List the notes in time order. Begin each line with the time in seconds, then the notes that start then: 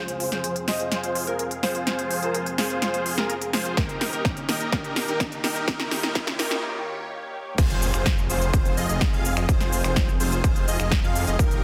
Already playing: F3 C4 F4 G#4 C5 F5, riser
0.08 closed hi-hat
0.20 open hi-hat
0.32 F4 G#4 C5, snare, closed hi-hat
0.44 closed hi-hat
0.56 closed hi-hat
0.68 F4 G#4 C5 D#5, snare, open hi-hat
0.80 closed hi-hat
0.92 F4 G#4 C5, snare, closed hi-hat
1.03 C5, closed hi-hat
1.15 open hi-hat
1.27 F4 G#4 A#4, closed hi-hat
1.39 closed hi-hat
1.51 closed hi-hat
1.63 F4 G#4 C5, snare, open hi-hat
1.75 closed hi-hat
1.87 F4 G#4 C5, snare, closed hi-hat
1.99 closed hi-hat
2.11 open hi-hat
2.22 F4 G#4 A#4 C5, closed hi-hat
2.34 closed hi-hat
2.46 closed hi-hat
2.58 F4 G#4 C5, snare, open hi-hat
2.70 closed hi-hat
2.82 F4 G#4 C5, snare, closed hi-hat
2.94 closed hi-hat
3.06 open hi-hat
3.18 F4 G#4 A#4, snare, closed hi-hat
3.30 G#4, closed hi-hat
3.42 G#4, closed hi-hat
3.53 F4 G#4 C5, snare, open hi-hat
3.65 closed hi-hat
3.77 D#3 A#3 D#4 G4 A#4 D#5, kick, snare, closed hi-hat
3.89 closed hi-hat
4.01 snare, open hi-hat
4.13 D#4 G4 A#4, closed hi-hat
4.25 kick, snare, closed hi-hat
4.37 closed hi-hat
4.49 D#4 G4 A#4, snare, open hi-hat
4.61 closed hi-hat
4.72 D#4 G4 A#4, kick, snare, closed hi-hat
4.84 closed hi-hat
4.96 snare, open hi-hat
5.08 D#4 G4 A#4, closed hi-hat
5.20 kick, snare, closed hi-hat
5.32 closed hi-hat
5.44 D#4 G4 A#4, snare, open hi-hat
5.56 closed hi-hat
5.68 D#4 G4 A#4 C#5, kick, snare, closed hi-hat
5.80 snare, closed hi-hat
5.91 snare, open hi-hat
6.03 D#4 G4 A#4, snare, closed hi-hat
6.15 kick, snare, closed hi-hat
6.27 snare, closed hi-hat
6.39 D#4 G4 A#4, snare, open hi-hat
6.51 snare, closed hi-hat
7.58 F1 C4 F4 G#4 C5, kick, closed hi-hat, crash, impact, shaker
7.70 closed hi-hat, shaker
7.82 open hi-hat, shaker
7.94 F1 F4 G#4 C5, finger snap, closed hi-hat, shaker
8.06 kick, snare, closed hi-hat, shaker
8.18 shaker
8.30 F1 F4 G#4 C5, open hi-hat, shaker
8.42 closed hi-hat, shaker
8.53 F1 F4 G#4 C5, kick, closed hi-hat, shaker
8.65 closed hi-hat, shaker
8.77 F1 F4 G#4 D#5, open hi-hat, shaker
8.89 F1 F4 G#4 D#5, closed hi-hat, shaker
9.01 kick, snare, closed hi-hat, shaker
9.13 F1 F4 G#4 F5, shaker
9.25 open hi-hat, shaker
9.37 F1 F4 G#4 D#5, finger snap, closed hi-hat, shaker
9.49 F1 D#4 F4 G#4 C5, kick, closed hi-hat, shaker
9.60 snare, closed hi-hat, shaker
9.73 open hi-hat, shaker
9.84 F1 F4 G#4 C5, finger snap, closed hi-hat, shaker
9.96 kick, snare, closed hi-hat, shaker
10.09 shaker
10.20 F1 F4 G#4 C5, open hi-hat, shaker
10.32 closed hi-hat, shaker
10.44 F1 F4 G#4 C5, kick, closed hi-hat, shaker
10.56 closed hi-hat, shaker
10.68 F1 F4 G#4 D#5, open hi-hat, shaker
10.80 F1 F4 G#4 D#5, finger snap, closed hi-hat, shaker
10.91 kick, snare, closed hi-hat, shaker
11.04 F2 F4 G#4 F5, shaker
11.15 open hi-hat, shaker
11.27 F1 F4 G#4 D#5, closed hi-hat, shaker
11.39 D#1 A#3 D#4 G4 A#4, kick, closed hi-hat, shaker
11.51 closed hi-hat, shaker